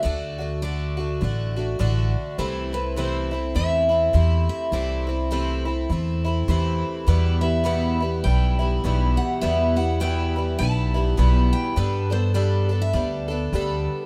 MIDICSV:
0, 0, Header, 1, 4, 480
1, 0, Start_track
1, 0, Tempo, 585938
1, 35, Time_signature, 4, 2, 24, 8
1, 11516, End_track
2, 0, Start_track
2, 0, Title_t, "Steel-string acoustic guitar"
2, 0, Program_c, 0, 25
2, 22, Note_on_c, 0, 74, 60
2, 500, Note_off_c, 0, 74, 0
2, 510, Note_on_c, 0, 74, 54
2, 1725, Note_off_c, 0, 74, 0
2, 1956, Note_on_c, 0, 69, 62
2, 2241, Note_off_c, 0, 69, 0
2, 2244, Note_on_c, 0, 71, 60
2, 2432, Note_off_c, 0, 71, 0
2, 2435, Note_on_c, 0, 72, 62
2, 2913, Note_on_c, 0, 76, 71
2, 2929, Note_off_c, 0, 72, 0
2, 3647, Note_off_c, 0, 76, 0
2, 3681, Note_on_c, 0, 76, 67
2, 3860, Note_off_c, 0, 76, 0
2, 3876, Note_on_c, 0, 74, 64
2, 4322, Note_off_c, 0, 74, 0
2, 4354, Note_on_c, 0, 72, 54
2, 5567, Note_off_c, 0, 72, 0
2, 5796, Note_on_c, 0, 74, 61
2, 6068, Note_off_c, 0, 74, 0
2, 6071, Note_on_c, 0, 76, 56
2, 6269, Note_off_c, 0, 76, 0
2, 6272, Note_on_c, 0, 78, 59
2, 6745, Note_off_c, 0, 78, 0
2, 6748, Note_on_c, 0, 79, 69
2, 7510, Note_off_c, 0, 79, 0
2, 7513, Note_on_c, 0, 78, 68
2, 7697, Note_off_c, 0, 78, 0
2, 7712, Note_on_c, 0, 76, 64
2, 7979, Note_off_c, 0, 76, 0
2, 8000, Note_on_c, 0, 78, 62
2, 8196, Note_off_c, 0, 78, 0
2, 8199, Note_on_c, 0, 79, 67
2, 8668, Note_off_c, 0, 79, 0
2, 8672, Note_on_c, 0, 81, 79
2, 9237, Note_off_c, 0, 81, 0
2, 9237, Note_on_c, 0, 79, 79
2, 9439, Note_off_c, 0, 79, 0
2, 9443, Note_on_c, 0, 79, 69
2, 9642, Note_off_c, 0, 79, 0
2, 9645, Note_on_c, 0, 71, 67
2, 9927, Note_off_c, 0, 71, 0
2, 9931, Note_on_c, 0, 72, 62
2, 10111, Note_off_c, 0, 72, 0
2, 10115, Note_on_c, 0, 74, 67
2, 10499, Note_on_c, 0, 76, 64
2, 10511, Note_off_c, 0, 74, 0
2, 10595, Note_on_c, 0, 74, 60
2, 10600, Note_off_c, 0, 76, 0
2, 11516, Note_off_c, 0, 74, 0
2, 11516, End_track
3, 0, Start_track
3, 0, Title_t, "Twelve-string acoustic guitar"
3, 0, Program_c, 1, 25
3, 30, Note_on_c, 1, 50, 49
3, 38, Note_on_c, 1, 57, 57
3, 44, Note_on_c, 1, 62, 57
3, 44, Note_on_c, 1, 66, 58
3, 305, Note_off_c, 1, 66, 0
3, 314, Note_on_c, 1, 66, 33
3, 319, Note_off_c, 1, 50, 0
3, 320, Note_off_c, 1, 62, 0
3, 323, Note_off_c, 1, 57, 0
3, 330, Note_on_c, 1, 62, 35
3, 340, Note_on_c, 1, 57, 28
3, 504, Note_off_c, 1, 57, 0
3, 508, Note_on_c, 1, 50, 50
3, 511, Note_off_c, 1, 62, 0
3, 512, Note_off_c, 1, 66, 0
3, 514, Note_on_c, 1, 57, 53
3, 521, Note_on_c, 1, 62, 52
3, 529, Note_on_c, 1, 66, 57
3, 784, Note_off_c, 1, 66, 0
3, 794, Note_on_c, 1, 66, 35
3, 798, Note_off_c, 1, 50, 0
3, 798, Note_off_c, 1, 62, 0
3, 801, Note_off_c, 1, 57, 0
3, 808, Note_on_c, 1, 62, 31
3, 820, Note_on_c, 1, 57, 29
3, 986, Note_off_c, 1, 57, 0
3, 989, Note_on_c, 1, 50, 42
3, 991, Note_off_c, 1, 66, 0
3, 996, Note_on_c, 1, 57, 42
3, 998, Note_off_c, 1, 62, 0
3, 1010, Note_on_c, 1, 62, 43
3, 1017, Note_on_c, 1, 66, 44
3, 1271, Note_off_c, 1, 66, 0
3, 1278, Note_off_c, 1, 50, 0
3, 1279, Note_off_c, 1, 62, 0
3, 1281, Note_on_c, 1, 66, 41
3, 1282, Note_off_c, 1, 57, 0
3, 1289, Note_on_c, 1, 62, 36
3, 1300, Note_on_c, 1, 57, 36
3, 1459, Note_off_c, 1, 57, 0
3, 1466, Note_on_c, 1, 50, 60
3, 1468, Note_off_c, 1, 62, 0
3, 1469, Note_on_c, 1, 57, 60
3, 1472, Note_off_c, 1, 66, 0
3, 1478, Note_on_c, 1, 62, 67
3, 1482, Note_on_c, 1, 66, 68
3, 1950, Note_off_c, 1, 50, 0
3, 1952, Note_on_c, 1, 48, 52
3, 1954, Note_on_c, 1, 52, 53
3, 1956, Note_off_c, 1, 62, 0
3, 1957, Note_off_c, 1, 57, 0
3, 1958, Note_off_c, 1, 66, 0
3, 1960, Note_on_c, 1, 57, 57
3, 1960, Note_on_c, 1, 60, 55
3, 1968, Note_on_c, 1, 64, 58
3, 2224, Note_off_c, 1, 64, 0
3, 2234, Note_on_c, 1, 64, 38
3, 2237, Note_off_c, 1, 60, 0
3, 2239, Note_off_c, 1, 48, 0
3, 2240, Note_off_c, 1, 52, 0
3, 2243, Note_off_c, 1, 57, 0
3, 2247, Note_on_c, 1, 60, 35
3, 2261, Note_on_c, 1, 57, 32
3, 2428, Note_off_c, 1, 57, 0
3, 2428, Note_on_c, 1, 48, 52
3, 2431, Note_off_c, 1, 64, 0
3, 2432, Note_off_c, 1, 60, 0
3, 2437, Note_on_c, 1, 52, 60
3, 2438, Note_on_c, 1, 57, 55
3, 2442, Note_on_c, 1, 60, 60
3, 2448, Note_on_c, 1, 64, 55
3, 2702, Note_off_c, 1, 64, 0
3, 2712, Note_on_c, 1, 64, 37
3, 2715, Note_off_c, 1, 60, 0
3, 2717, Note_off_c, 1, 48, 0
3, 2722, Note_off_c, 1, 52, 0
3, 2722, Note_off_c, 1, 57, 0
3, 2725, Note_on_c, 1, 60, 31
3, 2739, Note_on_c, 1, 57, 31
3, 2902, Note_off_c, 1, 57, 0
3, 2905, Note_on_c, 1, 52, 38
3, 2910, Note_off_c, 1, 64, 0
3, 2911, Note_off_c, 1, 60, 0
3, 2912, Note_on_c, 1, 57, 41
3, 2921, Note_on_c, 1, 60, 50
3, 2932, Note_on_c, 1, 64, 43
3, 3176, Note_off_c, 1, 64, 0
3, 3186, Note_on_c, 1, 64, 40
3, 3188, Note_off_c, 1, 60, 0
3, 3195, Note_off_c, 1, 52, 0
3, 3198, Note_on_c, 1, 60, 33
3, 3199, Note_off_c, 1, 57, 0
3, 3207, Note_on_c, 1, 57, 34
3, 3383, Note_off_c, 1, 57, 0
3, 3384, Note_on_c, 1, 48, 53
3, 3387, Note_off_c, 1, 64, 0
3, 3390, Note_on_c, 1, 52, 54
3, 3393, Note_off_c, 1, 60, 0
3, 3393, Note_on_c, 1, 57, 59
3, 3400, Note_on_c, 1, 64, 65
3, 3401, Note_on_c, 1, 60, 54
3, 3856, Note_off_c, 1, 48, 0
3, 3866, Note_off_c, 1, 57, 0
3, 3866, Note_on_c, 1, 48, 52
3, 3868, Note_off_c, 1, 52, 0
3, 3870, Note_off_c, 1, 60, 0
3, 3872, Note_on_c, 1, 52, 55
3, 3876, Note_on_c, 1, 57, 59
3, 3880, Note_off_c, 1, 64, 0
3, 3880, Note_on_c, 1, 60, 58
3, 3883, Note_on_c, 1, 64, 63
3, 4141, Note_off_c, 1, 64, 0
3, 4151, Note_on_c, 1, 64, 36
3, 4156, Note_off_c, 1, 48, 0
3, 4156, Note_off_c, 1, 60, 0
3, 4159, Note_off_c, 1, 52, 0
3, 4161, Note_off_c, 1, 57, 0
3, 4166, Note_on_c, 1, 60, 35
3, 4175, Note_on_c, 1, 57, 30
3, 4347, Note_off_c, 1, 57, 0
3, 4347, Note_on_c, 1, 48, 52
3, 4349, Note_off_c, 1, 64, 0
3, 4351, Note_off_c, 1, 60, 0
3, 4351, Note_on_c, 1, 52, 53
3, 4357, Note_on_c, 1, 57, 57
3, 4361, Note_on_c, 1, 60, 61
3, 4365, Note_on_c, 1, 64, 57
3, 4621, Note_off_c, 1, 64, 0
3, 4631, Note_on_c, 1, 64, 35
3, 4635, Note_off_c, 1, 60, 0
3, 4636, Note_off_c, 1, 48, 0
3, 4638, Note_off_c, 1, 52, 0
3, 4642, Note_off_c, 1, 57, 0
3, 4645, Note_on_c, 1, 60, 32
3, 4656, Note_on_c, 1, 57, 28
3, 4827, Note_off_c, 1, 57, 0
3, 4829, Note_off_c, 1, 64, 0
3, 4830, Note_on_c, 1, 52, 41
3, 4836, Note_off_c, 1, 60, 0
3, 4837, Note_on_c, 1, 57, 43
3, 4848, Note_on_c, 1, 60, 46
3, 4854, Note_on_c, 1, 64, 45
3, 5106, Note_off_c, 1, 64, 0
3, 5116, Note_on_c, 1, 64, 41
3, 5118, Note_off_c, 1, 52, 0
3, 5119, Note_off_c, 1, 60, 0
3, 5121, Note_off_c, 1, 57, 0
3, 5129, Note_on_c, 1, 60, 42
3, 5143, Note_on_c, 1, 57, 35
3, 5308, Note_on_c, 1, 48, 57
3, 5310, Note_off_c, 1, 57, 0
3, 5312, Note_off_c, 1, 64, 0
3, 5314, Note_off_c, 1, 60, 0
3, 5316, Note_on_c, 1, 52, 62
3, 5320, Note_on_c, 1, 57, 58
3, 5324, Note_on_c, 1, 60, 67
3, 5329, Note_on_c, 1, 64, 60
3, 5788, Note_on_c, 1, 40, 52
3, 5791, Note_off_c, 1, 48, 0
3, 5796, Note_off_c, 1, 52, 0
3, 5797, Note_off_c, 1, 57, 0
3, 5797, Note_on_c, 1, 47, 50
3, 5799, Note_off_c, 1, 60, 0
3, 5799, Note_on_c, 1, 52, 52
3, 5802, Note_on_c, 1, 55, 58
3, 5804, Note_off_c, 1, 64, 0
3, 5804, Note_on_c, 1, 59, 55
3, 5807, Note_on_c, 1, 64, 61
3, 6061, Note_off_c, 1, 64, 0
3, 6070, Note_on_c, 1, 64, 37
3, 6072, Note_off_c, 1, 59, 0
3, 6077, Note_off_c, 1, 40, 0
3, 6080, Note_off_c, 1, 55, 0
3, 6081, Note_off_c, 1, 47, 0
3, 6082, Note_on_c, 1, 59, 34
3, 6083, Note_off_c, 1, 52, 0
3, 6090, Note_on_c, 1, 55, 31
3, 6095, Note_on_c, 1, 52, 31
3, 6256, Note_on_c, 1, 40, 57
3, 6257, Note_off_c, 1, 52, 0
3, 6257, Note_off_c, 1, 55, 0
3, 6264, Note_off_c, 1, 59, 0
3, 6264, Note_on_c, 1, 47, 57
3, 6266, Note_on_c, 1, 52, 56
3, 6267, Note_on_c, 1, 55, 57
3, 6269, Note_off_c, 1, 64, 0
3, 6274, Note_on_c, 1, 59, 57
3, 6278, Note_on_c, 1, 64, 61
3, 6546, Note_off_c, 1, 64, 0
3, 6551, Note_off_c, 1, 40, 0
3, 6555, Note_off_c, 1, 47, 0
3, 6556, Note_off_c, 1, 52, 0
3, 6556, Note_on_c, 1, 64, 35
3, 6557, Note_off_c, 1, 55, 0
3, 6560, Note_off_c, 1, 59, 0
3, 6571, Note_on_c, 1, 59, 37
3, 6573, Note_on_c, 1, 55, 30
3, 6587, Note_on_c, 1, 52, 27
3, 6740, Note_off_c, 1, 52, 0
3, 6750, Note_on_c, 1, 52, 44
3, 6752, Note_off_c, 1, 64, 0
3, 6753, Note_off_c, 1, 55, 0
3, 6759, Note_off_c, 1, 59, 0
3, 6763, Note_on_c, 1, 55, 42
3, 6772, Note_on_c, 1, 59, 38
3, 6777, Note_on_c, 1, 64, 42
3, 7026, Note_off_c, 1, 64, 0
3, 7036, Note_on_c, 1, 64, 42
3, 7037, Note_off_c, 1, 59, 0
3, 7038, Note_off_c, 1, 52, 0
3, 7045, Note_off_c, 1, 55, 0
3, 7047, Note_on_c, 1, 59, 33
3, 7054, Note_on_c, 1, 55, 32
3, 7060, Note_on_c, 1, 52, 33
3, 7232, Note_off_c, 1, 64, 0
3, 7237, Note_off_c, 1, 59, 0
3, 7239, Note_off_c, 1, 52, 0
3, 7239, Note_on_c, 1, 40, 57
3, 7241, Note_off_c, 1, 55, 0
3, 7246, Note_on_c, 1, 47, 59
3, 7249, Note_on_c, 1, 52, 54
3, 7252, Note_on_c, 1, 59, 55
3, 7254, Note_on_c, 1, 55, 54
3, 7260, Note_on_c, 1, 64, 56
3, 7702, Note_off_c, 1, 40, 0
3, 7708, Note_off_c, 1, 47, 0
3, 7708, Note_off_c, 1, 52, 0
3, 7712, Note_on_c, 1, 40, 53
3, 7718, Note_on_c, 1, 47, 54
3, 7718, Note_on_c, 1, 52, 52
3, 7720, Note_off_c, 1, 55, 0
3, 7723, Note_off_c, 1, 59, 0
3, 7723, Note_on_c, 1, 55, 61
3, 7724, Note_off_c, 1, 64, 0
3, 7727, Note_on_c, 1, 59, 59
3, 7734, Note_on_c, 1, 64, 55
3, 7986, Note_off_c, 1, 64, 0
3, 7995, Note_off_c, 1, 59, 0
3, 7996, Note_on_c, 1, 64, 35
3, 8000, Note_off_c, 1, 40, 0
3, 8001, Note_off_c, 1, 55, 0
3, 8003, Note_off_c, 1, 47, 0
3, 8003, Note_off_c, 1, 52, 0
3, 8005, Note_on_c, 1, 59, 35
3, 8011, Note_on_c, 1, 55, 34
3, 8021, Note_on_c, 1, 52, 32
3, 8191, Note_off_c, 1, 55, 0
3, 8192, Note_off_c, 1, 52, 0
3, 8192, Note_off_c, 1, 64, 0
3, 8192, Note_on_c, 1, 40, 57
3, 8197, Note_off_c, 1, 59, 0
3, 8198, Note_on_c, 1, 47, 54
3, 8201, Note_on_c, 1, 55, 55
3, 8202, Note_on_c, 1, 52, 56
3, 8208, Note_on_c, 1, 59, 57
3, 8211, Note_on_c, 1, 64, 62
3, 8475, Note_off_c, 1, 64, 0
3, 8480, Note_off_c, 1, 40, 0
3, 8483, Note_off_c, 1, 47, 0
3, 8484, Note_off_c, 1, 55, 0
3, 8484, Note_off_c, 1, 59, 0
3, 8485, Note_off_c, 1, 52, 0
3, 8485, Note_on_c, 1, 64, 33
3, 8493, Note_on_c, 1, 59, 32
3, 8503, Note_on_c, 1, 55, 34
3, 8509, Note_on_c, 1, 52, 32
3, 8664, Note_off_c, 1, 52, 0
3, 8673, Note_on_c, 1, 52, 40
3, 8674, Note_off_c, 1, 55, 0
3, 8677, Note_off_c, 1, 64, 0
3, 8681, Note_off_c, 1, 59, 0
3, 8683, Note_on_c, 1, 55, 42
3, 8690, Note_on_c, 1, 59, 47
3, 8698, Note_on_c, 1, 64, 53
3, 8953, Note_off_c, 1, 64, 0
3, 8961, Note_off_c, 1, 52, 0
3, 8963, Note_on_c, 1, 64, 38
3, 8964, Note_off_c, 1, 59, 0
3, 8966, Note_off_c, 1, 55, 0
3, 8974, Note_on_c, 1, 59, 39
3, 8982, Note_on_c, 1, 55, 37
3, 8989, Note_on_c, 1, 52, 31
3, 9149, Note_off_c, 1, 52, 0
3, 9152, Note_on_c, 1, 40, 53
3, 9153, Note_on_c, 1, 47, 56
3, 9156, Note_off_c, 1, 55, 0
3, 9157, Note_off_c, 1, 59, 0
3, 9157, Note_off_c, 1, 64, 0
3, 9159, Note_on_c, 1, 52, 56
3, 9166, Note_on_c, 1, 55, 60
3, 9167, Note_on_c, 1, 59, 62
3, 9168, Note_on_c, 1, 64, 63
3, 9631, Note_off_c, 1, 52, 0
3, 9634, Note_off_c, 1, 55, 0
3, 9634, Note_on_c, 1, 55, 53
3, 9635, Note_off_c, 1, 40, 0
3, 9635, Note_off_c, 1, 47, 0
3, 9639, Note_off_c, 1, 59, 0
3, 9639, Note_on_c, 1, 59, 59
3, 9643, Note_off_c, 1, 64, 0
3, 9643, Note_on_c, 1, 62, 59
3, 9652, Note_on_c, 1, 69, 59
3, 9902, Note_off_c, 1, 69, 0
3, 9912, Note_off_c, 1, 62, 0
3, 9912, Note_on_c, 1, 69, 36
3, 9922, Note_off_c, 1, 55, 0
3, 9922, Note_on_c, 1, 62, 39
3, 9925, Note_off_c, 1, 59, 0
3, 9936, Note_on_c, 1, 59, 34
3, 10110, Note_off_c, 1, 59, 0
3, 10110, Note_on_c, 1, 55, 62
3, 10111, Note_off_c, 1, 62, 0
3, 10112, Note_off_c, 1, 69, 0
3, 10120, Note_on_c, 1, 59, 54
3, 10121, Note_on_c, 1, 62, 62
3, 10128, Note_on_c, 1, 69, 59
3, 10386, Note_off_c, 1, 69, 0
3, 10396, Note_on_c, 1, 69, 40
3, 10400, Note_off_c, 1, 55, 0
3, 10405, Note_off_c, 1, 59, 0
3, 10406, Note_off_c, 1, 62, 0
3, 10415, Note_on_c, 1, 62, 33
3, 10425, Note_on_c, 1, 59, 30
3, 10594, Note_off_c, 1, 69, 0
3, 10599, Note_off_c, 1, 59, 0
3, 10600, Note_on_c, 1, 55, 45
3, 10604, Note_off_c, 1, 62, 0
3, 10609, Note_on_c, 1, 59, 43
3, 10615, Note_on_c, 1, 62, 47
3, 10623, Note_on_c, 1, 69, 46
3, 10869, Note_off_c, 1, 69, 0
3, 10879, Note_on_c, 1, 69, 43
3, 10886, Note_off_c, 1, 55, 0
3, 10887, Note_off_c, 1, 62, 0
3, 10890, Note_off_c, 1, 59, 0
3, 10897, Note_on_c, 1, 62, 35
3, 10908, Note_on_c, 1, 59, 33
3, 11076, Note_off_c, 1, 69, 0
3, 11080, Note_off_c, 1, 59, 0
3, 11085, Note_off_c, 1, 62, 0
3, 11085, Note_on_c, 1, 55, 57
3, 11090, Note_on_c, 1, 59, 63
3, 11096, Note_on_c, 1, 62, 56
3, 11103, Note_on_c, 1, 69, 66
3, 11516, Note_off_c, 1, 55, 0
3, 11516, Note_off_c, 1, 59, 0
3, 11516, Note_off_c, 1, 62, 0
3, 11516, Note_off_c, 1, 69, 0
3, 11516, End_track
4, 0, Start_track
4, 0, Title_t, "Upright bass"
4, 0, Program_c, 2, 32
4, 37, Note_on_c, 2, 38, 62
4, 963, Note_off_c, 2, 38, 0
4, 996, Note_on_c, 2, 33, 70
4, 1451, Note_off_c, 2, 33, 0
4, 1473, Note_on_c, 2, 33, 76
4, 1745, Note_off_c, 2, 33, 0
4, 1951, Note_on_c, 2, 36, 64
4, 2879, Note_off_c, 2, 36, 0
4, 2911, Note_on_c, 2, 40, 74
4, 3368, Note_off_c, 2, 40, 0
4, 3391, Note_on_c, 2, 40, 74
4, 3664, Note_off_c, 2, 40, 0
4, 3864, Note_on_c, 2, 36, 63
4, 4796, Note_off_c, 2, 36, 0
4, 4829, Note_on_c, 2, 40, 70
4, 5287, Note_off_c, 2, 40, 0
4, 5309, Note_on_c, 2, 40, 68
4, 5583, Note_off_c, 2, 40, 0
4, 5794, Note_on_c, 2, 40, 66
4, 6721, Note_off_c, 2, 40, 0
4, 6756, Note_on_c, 2, 35, 66
4, 7211, Note_off_c, 2, 35, 0
4, 7241, Note_on_c, 2, 35, 73
4, 7510, Note_off_c, 2, 35, 0
4, 7720, Note_on_c, 2, 40, 68
4, 8646, Note_off_c, 2, 40, 0
4, 8680, Note_on_c, 2, 35, 71
4, 9134, Note_off_c, 2, 35, 0
4, 9161, Note_on_c, 2, 35, 73
4, 9431, Note_off_c, 2, 35, 0
4, 9639, Note_on_c, 2, 43, 68
4, 10566, Note_off_c, 2, 43, 0
4, 10598, Note_on_c, 2, 38, 71
4, 11055, Note_off_c, 2, 38, 0
4, 11079, Note_on_c, 2, 38, 74
4, 11352, Note_off_c, 2, 38, 0
4, 11516, End_track
0, 0, End_of_file